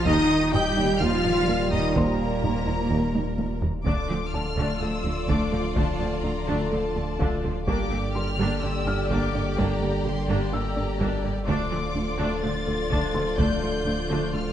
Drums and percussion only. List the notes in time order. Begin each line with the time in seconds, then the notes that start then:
0.06 taiko
0.54 taiko low-mid
1.25 taiko low-mid
1.73 taiko low-mid
1.96 taiko
2.44 taiko low-mid
3.15 taiko high
3.39 taiko high
3.62 taiko low
3.87 taiko
5.29 taiko
5.76 taiko
7.20 taiko
7.68 taiko
9.11 taiko
9.58 taiko
11.00 taiko
11.48 taiko
12.91 taiko
13.39 taiko